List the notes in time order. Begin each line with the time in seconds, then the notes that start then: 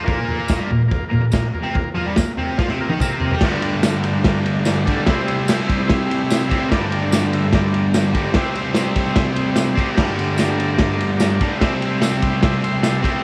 0.04 A#2 A#3 F4 A#4
0.08 kick, floor tom
0.25 A#3 F4 A#4, floor tom
0.47 A#3 F4 A#4, kick, snare, floor tom, tambourine
0.59 G2 G3
0.64 A#3 F4 A#4
0.69 A#2, floor tom
0.88 A#3 F4 A#4, kick, floor tom
1.09 A#2 A#3 F4 A#4
1.13 floor tom
1.22 A#2
1.32 A#2 A#3 F4 A#4, kick, snare, floor tom, tambourine
1.53 A#3 F4 A#4, floor tom
1.63 C3 C4
1.73 A#3 F4 A#4, kick, floor tom
1.95 F3 A#3 F4, floor tom
2.00 A#4
2.06 G2 G3
2.16 A#2 A#3 F4 A#4, kick, snare, floor tom, tambourine
2.37 C3 A#3 C4 F4 A#4, floor tom
2.58 F3 A#3 F4 C5, kick, snare
2.68 C3 C4, snare
2.80 A#3 F4 A#4
2.89 D#3 D#4, high tom
3.00 C3 A#3 C4 F4 A#4, kick, mid tom, tambourine
3.20 A#3 F4 A#4, floor tom
3.31 G3 G4, floor tom
3.41 G2 D3 D4 G4, kick, snare, crash
3.45 G3 A#4
3.62 D4 G4 A#4, ride
3.83 D4 G4 A#4, snare, ride, tambourine
4.03 D4 G4 A#4, ride
4.24 D4 G4 A#4, kick, snare, ride
4.44 D4 G4 A#4, ride
4.62 D4 G4 A#4, snare, ride, tambourine
4.85 G2 D3 G3 D4 G4 A4, kick, ride
5.06 C3 G3 C4 E4 G4 C5, kick, snare, ride
5.27 E4 G4 C5, ride
5.48 E4 G4 C5, snare, ride, tambourine
5.66 E4 G4 C5, kick, ride
5.87 E4 G4 C5, kick, snare, ride
6.05 E4 G4 C5
6.11 ride
6.26 E4 G4 C5
6.30 snare, ride, tambourine
6.47 G3 C4 E4 G4 C5, ride
6.51 C3, kick
6.69 G2 G4 A#4 D5, kick, snare, ride
6.73 D3 G3
6.89 G4 A#4 D5, ride
7.10 G4 A#4 D5, snare, ride, tambourine
7.33 G4 A#4 E5, ride
7.53 G4 A#4 D5, kick, snare, ride
7.73 G4 A#4 D5, ride
7.94 G4 A#4 D5, snare, ride, tambourine
8.13 G2 D3 G3 G4 A#4 D5, kick, ride
8.34 C3 G3 C4 G4 C5 E5, kick, snare, ride
8.55 G4 C5 E5, ride
8.74 G4 C5 E5, snare, ride, tambourine
8.96 G4 E5, kick, ride
9.00 C5
9.13 G4 C5 E5, kick, snare, ride
9.32 G4 C5 E5, ride
9.51 G4 C5 E5
9.56 snare, ride, tambourine
9.74 C4 G4 C5 D5, kick
9.78 C3 G3, ride
9.95 G2 D3 G4 A#4 D5, kick, snare, crash
9.99 G3
10.11 G4 A#4 D5
10.19 ride
10.33 G4 A#4 D5
10.38 snare, ride, tambourine
10.51 G4 A#4 D5
10.60 ride
10.73 G4 A#4 D5
10.78 kick, snare, ride
10.93 G4 A#4 D5
11.00 ride
11.17 G4 A#4 D5, snare, tambourine
11.21 ride
11.34 G4 A#4 D5
11.41 G2 D3 G3, kick, ride
11.59 C3 G3 G4 C5 E5, kick, snare, ride
11.64 C4
11.82 G4 C5 E5, ride
12.02 G4 C5 E5, snare, ride, tambourine
12.22 G4 C5 E5, kick, ride
12.42 G4 C5 E5, kick, snare, ride
12.64 G4 C5 E5 C6, ride
12.83 G4 C5 E5 A5, snare, ride, tambourine
13.02 C3 G3 C4 G4 C5 E5 G5, kick, ride